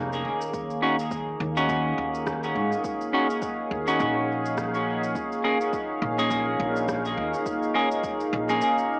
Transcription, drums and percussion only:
0.13 shaker soft
0.41 shaker soft
0.54 kick loud
0.54 shaker medium
0.70 shaker soft
0.99 shaker soft
1.11 kick loud
1.11 shaker soft
1.57 shaker soft
1.69 kick loud
1.69 shaker soft
2.15 shaker soft
2.27 kick loud
2.27 cross-stick medium
2.27 shaker medium
2.44 shaker soft
2.72 shaker soft
2.84 kick loud
2.84 shaker soft
3.01 shaker soft
3.30 shaker soft
3.42 kick loud
3.42 shaker soft
3.88 shaker soft
4.00 kick loud
4.00 shaker soft
4.46 shaker soft
4.58 kick loud
4.58 cross-stick medium
4.58 shaker soft
4.74 shaker soft
5.03 shaker soft
5.15 kick loud
5.15 shaker medium
5.32 shaker soft
5.61 shaker soft
5.73 kick loud
5.73 shaker medium
6.19 shaker soft
6.31 kick loud
6.31 shaker medium
6.76 shaker soft
6.88 kick loud
6.88 cross-stick medium
6.88 shaker medium
7.05 shaker soft
7.34 shaker soft
7.46 kick loud
7.46 shaker medium
7.63 shaker soft
7.91 shaker soft
8.04 kick loud
8.04 shaker medium
8.20 shaker soft
8.49 shaker soft
8.61 shaker medium
8.78 shaker soft

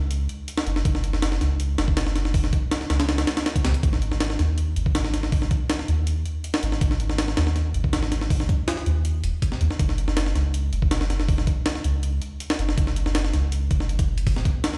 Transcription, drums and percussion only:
0.11 closed hi-hat medium
0.29 closed hi-hat medium
0.48 closed hi-hat medium
0.58 snare loud
0.67 closed hi-hat medium
0.76 snare medium
0.85 kick loud
0.85 closed hi-hat medium
0.95 snare soft
1.04 closed hi-hat medium
1.13 snare medium
1.22 snare loud
1.22 closed hi-hat medium
1.32 snare medium
1.41 snare soft
1.41 closed hi-hat medium
1.60 closed hi-hat medium
1.78 snare loud
1.78 closed hi-hat medium
1.88 kick loud
1.97 snare loud
1.97 closed hi-hat medium
2.07 snare medium
2.16 snare medium
2.16 closed hi-hat medium
2.25 snare medium
2.34 kick loud
2.34 open hi-hat medium
2.44 snare soft
2.53 kick medium
2.53 closed hi-hat medium
2.71 snare loud
2.71 closed hi-hat medium
2.81 snare soft
2.90 snare loud
2.90 closed hi-hat medium
3.00 snare loud
3.00 closed hi-hat medium
3.09 snare loud
3.09 closed hi-hat medium
3.18 snare loud
3.18 closed hi-hat medium
3.27 snare loud
3.27 closed hi-hat medium
3.37 snare loud
3.37 closed hi-hat medium
3.46 snare loud
3.46 closed hi-hat medium
3.56 kick loud
3.56 closed hi-hat medium
3.65 snare loud
3.65 closed hi-hat medium
3.74 closed hi-hat medium
3.83 kick loud
3.83 closed hi-hat medium
3.93 snare soft
4.02 closed hi-hat medium
4.12 snare medium
4.20 snare loud
4.20 closed hi-hat medium
4.30 snare medium
4.39 snare soft
4.39 closed hi-hat medium
4.58 closed hi-hat medium
4.76 closed hi-hat medium
4.86 kick loud
4.95 snare loud
4.95 closed hi-hat medium
5.05 snare medium
5.14 snare medium
5.14 closed hi-hat medium
5.23 snare medium
5.32 kick loud
5.32 open hi-hat medium
5.42 snare soft
5.51 kick loud
5.51 closed hi-hat medium
5.70 snare loud
5.70 closed hi-hat medium
5.79 snare soft
5.88 closed hi-hat medium
6.07 closed hi-hat medium
6.26 closed hi-hat medium
6.44 closed hi-hat medium
6.54 snare loud
6.63 closed hi-hat medium
6.72 snare medium
6.81 kick loud
6.81 closed hi-hat medium
6.91 snare soft
7.00 closed hi-hat medium
7.10 snare medium
7.18 snare loud
7.18 closed hi-hat medium
7.28 snare medium
7.37 snare loud
7.37 closed hi-hat medium
7.47 snare soft
7.56 snare soft
7.56 closed hi-hat medium
7.74 closed hi-hat medium
7.84 kick loud
7.93 snare loud
7.93 closed hi-hat medium
8.03 snare medium
8.12 snare medium
8.12 closed hi-hat medium
8.21 snare medium
8.30 kick loud
8.30 open hi-hat medium
8.40 snare soft
8.49 kick loud
8.49 closed hi-hat medium
8.68 snare loud
8.68 closed hi-hat medium
8.77 snare soft
8.86 closed hi-hat medium
9.05 closed hi-hat medium
9.24 closed hi-hat medium
9.42 kick loud
9.42 closed hi-hat medium
9.52 snare soft
9.61 closed hi-hat medium
9.71 snare soft
9.79 kick loud
9.79 closed hi-hat medium
9.89 snare soft
9.98 closed hi-hat medium
10.08 snare medium
10.17 snare loud
10.17 closed hi-hat medium
10.26 snare medium
10.36 snare soft
10.36 closed hi-hat medium
10.54 closed hi-hat medium
10.73 closed hi-hat medium
10.82 kick loud
10.91 snare loud
10.91 closed hi-hat medium
11.01 snare medium
11.10 snare medium
11.10 closed hi-hat medium
11.20 snare medium
11.29 kick loud
11.29 open hi-hat medium
11.38 snare soft
11.47 kick loud
11.47 closed hi-hat medium
11.66 snare loud
11.66 closed hi-hat medium
11.75 snare soft
11.84 closed hi-hat medium
12.03 closed hi-hat medium
12.22 closed hi-hat medium
12.40 closed hi-hat medium
12.50 snare loud
12.59 closed hi-hat medium
12.69 snare medium
12.78 kick loud
12.78 closed hi-hat medium
12.87 snare soft
12.96 closed hi-hat medium
13.06 snare medium
13.15 snare loud
13.15 closed hi-hat medium
13.25 snare medium
13.34 snare soft
13.34 closed hi-hat medium
13.52 closed hi-hat medium
13.71 kick loud
13.71 closed hi-hat medium
13.80 snare soft
13.89 closed hi-hat medium
13.99 kick loud
13.99 closed hi-hat medium
14.18 closed hi-hat medium
14.27 kick loud
14.27 open hi-hat medium
14.36 snare soft
14.45 kick loud
14.45 closed hi-hat medium
14.64 snare loud
14.64 closed hi-hat medium
14.74 snare soft

